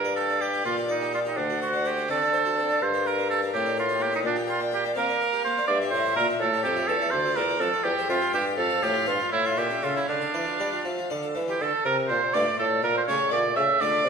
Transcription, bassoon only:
0, 0, Header, 1, 2, 480
1, 0, Start_track
1, 0, Key_signature, -2, "minor"
1, 0, Tempo, 480769
1, 1370, Time_signature, 6, 3, 24, 8
1, 5676, Key_signature, -1, "minor"
1, 8078, Tempo, 502513
1, 11438, Tempo, 487805
1, 13882, End_track
2, 0, Start_track
2, 0, Title_t, "Bassoon"
2, 0, Program_c, 0, 70
2, 0, Note_on_c, 0, 43, 56
2, 605, Note_off_c, 0, 43, 0
2, 641, Note_on_c, 0, 46, 55
2, 1369, Note_on_c, 0, 38, 54
2, 1384, Note_off_c, 0, 46, 0
2, 2087, Note_off_c, 0, 38, 0
2, 2093, Note_on_c, 0, 50, 53
2, 2796, Note_off_c, 0, 50, 0
2, 2815, Note_on_c, 0, 43, 56
2, 3518, Note_off_c, 0, 43, 0
2, 3531, Note_on_c, 0, 45, 57
2, 4232, Note_off_c, 0, 45, 0
2, 4245, Note_on_c, 0, 46, 64
2, 4947, Note_off_c, 0, 46, 0
2, 4961, Note_on_c, 0, 58, 58
2, 5661, Note_off_c, 0, 58, 0
2, 5666, Note_on_c, 0, 43, 60
2, 5908, Note_on_c, 0, 45, 59
2, 5923, Note_off_c, 0, 43, 0
2, 6141, Note_off_c, 0, 45, 0
2, 6147, Note_on_c, 0, 46, 55
2, 6257, Note_off_c, 0, 46, 0
2, 6387, Note_on_c, 0, 45, 63
2, 6628, Note_on_c, 0, 41, 63
2, 6643, Note_off_c, 0, 45, 0
2, 6870, Note_off_c, 0, 41, 0
2, 6876, Note_on_c, 0, 40, 60
2, 7106, Note_off_c, 0, 40, 0
2, 7112, Note_on_c, 0, 38, 60
2, 7345, Note_off_c, 0, 38, 0
2, 7351, Note_on_c, 0, 40, 65
2, 7576, Note_off_c, 0, 40, 0
2, 7582, Note_on_c, 0, 41, 58
2, 7694, Note_off_c, 0, 41, 0
2, 7827, Note_on_c, 0, 40, 63
2, 7939, Note_off_c, 0, 40, 0
2, 8071, Note_on_c, 0, 41, 62
2, 8178, Note_off_c, 0, 41, 0
2, 8308, Note_on_c, 0, 43, 61
2, 8533, Note_off_c, 0, 43, 0
2, 8539, Note_on_c, 0, 41, 67
2, 8769, Note_off_c, 0, 41, 0
2, 8775, Note_on_c, 0, 45, 58
2, 9011, Note_off_c, 0, 45, 0
2, 9019, Note_on_c, 0, 43, 60
2, 9126, Note_off_c, 0, 43, 0
2, 9257, Note_on_c, 0, 45, 61
2, 9489, Note_off_c, 0, 45, 0
2, 9495, Note_on_c, 0, 46, 57
2, 9605, Note_off_c, 0, 46, 0
2, 9739, Note_on_c, 0, 49, 55
2, 9979, Note_off_c, 0, 49, 0
2, 9984, Note_on_c, 0, 50, 57
2, 10223, Note_off_c, 0, 50, 0
2, 10228, Note_on_c, 0, 52, 54
2, 10337, Note_off_c, 0, 52, 0
2, 10474, Note_on_c, 0, 55, 55
2, 10583, Note_off_c, 0, 55, 0
2, 10708, Note_on_c, 0, 53, 55
2, 10950, Note_off_c, 0, 53, 0
2, 10957, Note_on_c, 0, 50, 57
2, 11197, Note_off_c, 0, 50, 0
2, 11202, Note_on_c, 0, 52, 55
2, 11435, Note_off_c, 0, 52, 0
2, 11440, Note_on_c, 0, 50, 61
2, 11548, Note_off_c, 0, 50, 0
2, 11677, Note_on_c, 0, 48, 60
2, 11916, Note_off_c, 0, 48, 0
2, 11924, Note_on_c, 0, 46, 59
2, 12033, Note_off_c, 0, 46, 0
2, 12166, Note_on_c, 0, 43, 64
2, 12274, Note_off_c, 0, 43, 0
2, 12408, Note_on_c, 0, 45, 60
2, 12633, Note_off_c, 0, 45, 0
2, 12638, Note_on_c, 0, 46, 62
2, 12876, Note_off_c, 0, 46, 0
2, 12882, Note_on_c, 0, 49, 66
2, 12990, Note_off_c, 0, 49, 0
2, 13118, Note_on_c, 0, 46, 67
2, 13361, Note_on_c, 0, 49, 61
2, 13375, Note_off_c, 0, 46, 0
2, 13589, Note_off_c, 0, 49, 0
2, 13595, Note_on_c, 0, 50, 66
2, 13837, Note_on_c, 0, 48, 67
2, 13852, Note_off_c, 0, 50, 0
2, 13882, Note_off_c, 0, 48, 0
2, 13882, End_track
0, 0, End_of_file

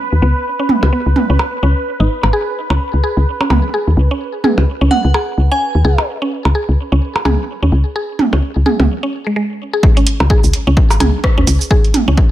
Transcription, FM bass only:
0, 0, Header, 1, 2, 480
1, 0, Start_track
1, 0, Tempo, 468750
1, 468, Time_signature, 4, 2, 24, 8
1, 12610, End_track
2, 0, Start_track
2, 0, Title_t, "FM bass"
2, 0, Program_c, 0, 39
2, 127, Note_on_c, 0, 39, 75
2, 208, Note_off_c, 0, 39, 0
2, 227, Note_on_c, 0, 37, 95
2, 341, Note_off_c, 0, 37, 0
2, 848, Note_on_c, 0, 37, 86
2, 928, Note_off_c, 0, 37, 0
2, 1088, Note_on_c, 0, 37, 74
2, 1168, Note_off_c, 0, 37, 0
2, 1328, Note_on_c, 0, 37, 90
2, 1408, Note_off_c, 0, 37, 0
2, 1667, Note_on_c, 0, 37, 82
2, 1781, Note_off_c, 0, 37, 0
2, 2046, Note_on_c, 0, 32, 97
2, 2128, Note_off_c, 0, 32, 0
2, 2287, Note_on_c, 0, 32, 78
2, 2368, Note_off_c, 0, 32, 0
2, 2766, Note_on_c, 0, 37, 91
2, 2848, Note_off_c, 0, 37, 0
2, 3007, Note_on_c, 0, 37, 74
2, 3088, Note_off_c, 0, 37, 0
2, 3246, Note_on_c, 0, 37, 90
2, 3327, Note_off_c, 0, 37, 0
2, 3586, Note_on_c, 0, 37, 82
2, 3700, Note_off_c, 0, 37, 0
2, 3968, Note_on_c, 0, 39, 75
2, 4048, Note_off_c, 0, 39, 0
2, 4066, Note_on_c, 0, 37, 91
2, 4180, Note_off_c, 0, 37, 0
2, 4688, Note_on_c, 0, 37, 93
2, 4768, Note_off_c, 0, 37, 0
2, 4928, Note_on_c, 0, 37, 78
2, 5008, Note_off_c, 0, 37, 0
2, 5167, Note_on_c, 0, 37, 97
2, 5248, Note_off_c, 0, 37, 0
2, 5507, Note_on_c, 0, 37, 84
2, 5621, Note_off_c, 0, 37, 0
2, 5888, Note_on_c, 0, 39, 80
2, 5968, Note_off_c, 0, 39, 0
2, 5987, Note_on_c, 0, 37, 97
2, 6101, Note_off_c, 0, 37, 0
2, 6608, Note_on_c, 0, 37, 88
2, 6688, Note_off_c, 0, 37, 0
2, 6848, Note_on_c, 0, 37, 77
2, 6928, Note_off_c, 0, 37, 0
2, 7087, Note_on_c, 0, 37, 94
2, 7168, Note_off_c, 0, 37, 0
2, 7427, Note_on_c, 0, 37, 84
2, 7541, Note_off_c, 0, 37, 0
2, 7808, Note_on_c, 0, 39, 76
2, 7888, Note_off_c, 0, 39, 0
2, 7908, Note_on_c, 0, 37, 99
2, 8021, Note_off_c, 0, 37, 0
2, 8529, Note_on_c, 0, 37, 91
2, 8609, Note_off_c, 0, 37, 0
2, 8768, Note_on_c, 0, 37, 76
2, 8848, Note_off_c, 0, 37, 0
2, 9008, Note_on_c, 0, 37, 92
2, 9088, Note_off_c, 0, 37, 0
2, 10448, Note_on_c, 0, 37, 97
2, 10528, Note_off_c, 0, 37, 0
2, 10688, Note_on_c, 0, 37, 83
2, 10768, Note_off_c, 0, 37, 0
2, 10927, Note_on_c, 0, 37, 98
2, 11008, Note_off_c, 0, 37, 0
2, 11267, Note_on_c, 0, 37, 92
2, 11381, Note_off_c, 0, 37, 0
2, 11648, Note_on_c, 0, 39, 79
2, 11728, Note_off_c, 0, 39, 0
2, 11748, Note_on_c, 0, 37, 101
2, 11861, Note_off_c, 0, 37, 0
2, 12369, Note_on_c, 0, 37, 96
2, 12449, Note_off_c, 0, 37, 0
2, 12610, End_track
0, 0, End_of_file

